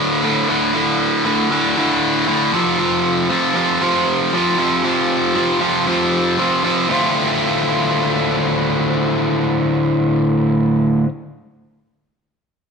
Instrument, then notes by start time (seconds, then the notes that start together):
overdriven electric guitar
Already playing: D2 A2 D3
0.23 D2 A2 D3
0.48 D2 A2 D3
0.74 D2 A2 D3
1.24 D2 A2 D3
1.50 D2 A2 D3
1.76 D2 A2 D3
2.27 D2 A2 D3
2.53 F2 C3 F3
2.78 F2 C3 F3
3.29 F2 C3 F3
3.54 F2 C3 F3
3.81 F2 C3 F3
4.33 F2 C3 F3
4.57 F2 C3 F3
4.83 F2 C3 F3
5.35 F2 C3 F3
5.60 F2 C3 F3
5.86 F2 C3 F3
6.38 F2 C3 F3
6.63 F2 C3 F3
6.88 D2 A2 D3 A3 C4
6.92 F4